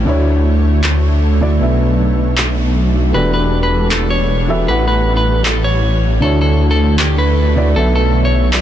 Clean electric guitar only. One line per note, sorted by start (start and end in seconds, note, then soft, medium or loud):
3.14 3.31 B4 medium
3.34 3.58 B4 medium
3.63 3.87 B4 medium
3.91 4.08 A4 medium
4.10 4.61 C#5 medium
4.68 4.85 B4 medium
4.88 5.12 B4 medium
5.17 5.41 B4 medium
5.45 5.62 A4 medium
5.64 6.15 C#5 medium
6.22 6.38 A4 medium
6.41 6.66 A4 medium
6.71 6.95 A4 medium
6.99 7.15 G4 medium
7.18 7.69 B4 medium
7.76 7.92 A4 medium
7.96 8.20 A4 medium
8.25 8.49 C#5 medium
8.53 8.61 D5 medium